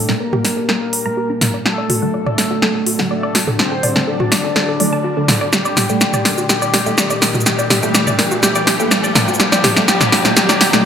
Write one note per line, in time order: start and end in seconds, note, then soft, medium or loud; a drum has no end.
0.00 1.62 A#2 medium
0.00 1.62 G3 medium
0.00 0.17 A3 medium
0.00 9.36 D4 medium
0.00 1.62 G4 medium
0.00 0.17 A4 medium
0.00 riser medium
0.09 1.03 A#2 medium
0.09 1.03 G3 medium
0.09 1.03 A#3 loud
0.09 0.17 A#5 loud
0.09 snare soft
0.20 1.56 A#3 medium
0.20 1.56 A#4 loud
0.20 0.26 A#4 medium
0.33 0.44 G4 loud
0.33 mid tom medium
0.45 0.50 D5 medium
0.45 snare medium
0.45 open hi-hat medium
0.57 0.65 A4 medium
0.69 0.80 A#4 loud
0.69 snare medium
0.81 0.86 A#4 medium
0.93 1.02 D5 medium
0.93 open hi-hat loud
1.05 1.24 A#2 medium
1.05 1.24 G3 medium
1.05 1.24 A3 loud
1.05 1.14 A#5 loud
1.17 1.26 G4 medium
1.30 1.38 D4 medium
1.41 1.47 D5 medium
1.41 snare medium
1.41 mid tom medium
1.41 open hi-hat medium
1.54 1.62 D5 loud
1.65 5.49 A2 medium
1.65 5.49 D3 medium
1.65 5.49 F#3 medium
1.65 3.02 A3 medium
1.65 5.49 F#4 medium
1.65 1.78 F#4 loud
1.65 3.02 A4 loud
1.65 snare medium
1.78 1.86 D5 medium
1.90 1.95 F#4 medium
1.90 mid tom medium
1.90 open hi-hat loud
2.02 2.96 D3 medium
2.02 2.96 F#3 medium
2.02 2.96 A3 loud
2.02 2.07 F#5 medium
2.14 2.23 D5 medium
2.26 2.38 D5 loud
2.26 mid tom medium
2.38 2.47 A4 medium
2.38 snare medium
2.38 open hi-hat loud
2.51 2.56 F#4 medium
2.62 2.74 A4 loud
2.62 snare medium
2.75 2.80 A4 medium
2.87 2.95 F#4 medium
2.87 open hi-hat loud
2.99 3.18 D3 medium
2.99 3.18 F#3 medium
2.99 3.18 A3 loud
2.99 3.07 F#5 medium
2.99 snare medium
3.11 3.55 A3 medium
3.11 3.55 A4 medium
3.11 3.22 D5 medium
3.23 3.34 D5 loud
3.35 3.40 F#4 medium
3.35 snare medium
3.35 open hi-hat loud
3.47 3.56 A4 medium
3.47 mid tom medium
3.59 4.04 C4 medium
3.59 3.71 A4 loud
3.59 4.04 C5 medium
3.59 snare medium
3.72 3.77 A4 medium
3.83 3.95 D5 loud
3.83 mid tom medium
3.83 open hi-hat loud
3.96 4.78 D3 medium
3.96 4.78 F#3 medium
3.96 4.78 A3 loud
3.96 4.04 A5 loud
3.96 snare medium
4.07 5.43 D4 medium
4.07 4.13 A4 medium
4.07 5.43 D5 medium
4.20 4.31 F#4 loud
4.20 mid tom medium
4.32 4.37 D5 medium
4.32 snare medium
4.32 open hi-hat medium
4.44 4.52 A4 medium
4.56 4.67 A4 loud
4.56 snare medium
4.68 4.73 A4 medium
4.80 5.14 D3 medium
4.80 5.14 F#3 medium
4.80 5.14 A3 loud
4.80 4.89 D5 medium
4.80 open hi-hat loud
4.93 5.01 A5 loud
5.04 5.13 F#4 medium
5.17 5.28 D3 medium
5.17 5.28 F#3 medium
5.17 5.28 A3 medium
5.17 5.25 D4 medium
5.28 5.34 D5 medium
5.28 snare medium
5.28 mid tom medium
5.28 open hi-hat medium
5.41 5.49 D5 loud
5.53 10.85 A#2 medium
5.53 10.85 G3 medium
5.53 6.48 G3 medium
5.53 9.36 A3 medium
5.53 10.85 G4 medium
5.53 6.48 G4 medium
5.53 5.65 G4 medium
5.53 snare medium
5.53 shaker medium
5.65 5.73 D5 medium
5.65 shaker soft
5.77 5.82 G4 medium
5.77 snare medium
5.77 mid tom medium
5.77 open hi-hat loud
5.77 shaker soft
5.89 6.48 A#2 medium
5.89 6.48 G3 medium
5.89 6.48 A3 medium
5.89 5.94 G5 medium
5.89 shaker soft
6.01 6.10 D5 medium
6.01 snare medium
6.01 shaker medium
6.14 6.25 D5 medium
6.14 mid tom medium
6.14 shaker soft
6.25 6.34 A#4 medium
6.25 snare medium
6.25 open hi-hat medium
6.38 6.43 F#4 medium
6.38 shaker soft
6.49 7.44 G3 medium
6.49 6.61 G4 medium
6.49 7.44 G4 loud
6.49 snare medium
6.49 shaker medium
6.62 6.70 D5 loud
6.62 shaker soft
6.74 6.79 G4 medium
6.74 snare medium
6.74 open hi-hat loud
6.86 7.44 A#2 medium
6.86 7.44 G3 medium
6.86 7.44 A3 medium
6.86 6.91 G5 medium
6.86 shaker soft
6.98 7.07 D5 medium
6.98 snare medium
6.98 shaker medium
7.10 7.21 D5 loud
7.10 shaker soft
7.22 7.31 A#4 medium
7.22 snare medium
7.22 open hi-hat loud
7.22 shaker soft
7.34 7.39 F#4 medium
7.34 mid tom medium
7.34 shaker soft
7.40 shaker soft
7.46 8.41 G3 medium
7.46 8.41 G4 loud
7.46 7.58 G4 loud
7.46 snare medium
7.46 shaker medium
7.59 7.67 D5 medium
7.59 shaker soft
7.70 7.76 G4 medium
7.70 snare medium
7.70 mid tom medium
7.70 open hi-hat loud
7.70 shaker soft
7.83 8.41 A#2 medium
7.83 8.41 G3 medium
7.83 8.41 A3 loud
7.83 7.88 G5 medium
7.83 shaker soft
7.95 8.03 D5 medium
7.95 snare medium
7.95 shaker medium
8.07 8.18 D5 loud
8.07 mid tom medium
8.07 shaker soft
8.19 8.28 A#4 medium
8.19 snare medium
8.19 open hi-hat medium
8.31 8.36 F#4 medium
8.31 shaker soft
8.43 9.38 G3 medium
8.43 8.55 G4 loud
8.43 9.38 G4 loud
8.43 snare medium
8.43 shaker medium
8.55 8.64 D5 loud
8.55 shaker soft
8.67 8.72 G4 loud
8.67 snare medium
8.67 open hi-hat loud
8.80 9.38 A#2 medium
8.80 9.38 G3 medium
8.80 9.38 A3 loud
8.80 8.85 G5 medium
8.80 shaker soft
8.91 9.00 D5 medium
8.91 snare medium
8.91 shaker medium
9.04 9.15 D5 loud
9.04 shaker soft
9.15 9.24 A#4 medium
9.15 snare medium
9.15 mid tom loud
9.15 open hi-hat medium
9.15 shaker soft
9.28 9.33 F#4 medium
9.28 shaker soft
9.34 shaker soft
9.40 10.85 D#3 medium
9.40 9.86 G3 medium
9.40 10.85 D#4 medium
9.40 9.52 G4 loud
9.40 9.86 G4 loud
9.40 snare medium
9.40 shaker medium
9.52 9.60 D5 medium
9.52 snare medium
9.52 shaker soft
9.64 9.69 G4 loud
9.64 snare medium
9.64 mid tom medium
9.64 open hi-hat loud
9.64 shaker soft
9.76 9.86 A#2 medium
9.76 9.86 G3 medium
9.76 9.86 A3 loud
9.76 9.81 G5 medium
9.76 snare medium
9.76 shaker soft
9.88 10.35 G3 medium
9.88 10.35 G4 loud
9.88 10.00 G4 loud
9.88 snare medium
9.88 shaker medium
10.01 10.09 D5 loud
10.01 snare medium
10.01 mid tom medium
10.01 shaker soft
10.12 10.18 G4 loud
10.12 snare medium
10.12 open hi-hat medium
10.25 10.35 A#2 medium
10.25 10.35 G3 medium
10.25 10.35 A3 loud
10.25 10.30 G5 medium
10.25 snare medium
10.25 shaker soft
10.37 10.83 G3 medium
10.37 10.83 G4 loud
10.37 10.49 G4 loud
10.37 snare loud
10.37 shaker medium
10.49 10.57 D5 loud
10.49 snare medium
10.49 shaker soft
10.61 10.66 G4 loud
10.61 snare loud
10.61 open hi-hat loud
10.73 10.83 A#2 medium
10.73 10.83 G3 medium
10.73 10.83 A3 loud
10.73 10.78 G5 medium
10.73 snare medium
10.73 shaker soft